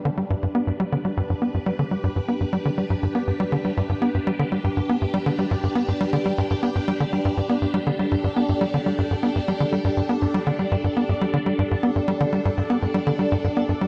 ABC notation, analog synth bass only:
X:1
M:4/4
L:1/16
Q:1/4=121
K:Gmix
V:1 name="Analog synth bass" clef=bass
D, G, G,, G,, B, G,, G, D, G, G,, G,, B, G,, G, D, G, | G,, G,, B, G,, G, D, G, G,, G,, B, G,, G, D, G, G,, G,, | B, G,, G, D, G, G,, G,, B, G,, G, D, G, G,, G,, B, G,, | G, D, G, G,, G,, B, G,, G, D, G, G,, G,, B, G,, G, D, |
G, G,, G,, B, G,, G, D, G, G,, G,, B, G,, G, D, G, G,, | G,, B, G,, G, D, G, G,, G,, B, G,, G, D, G, G,, G,, B, | G,, G, D, G, G,, G,, B, G,, G, D, G, G,, G,, B, G,, G, |]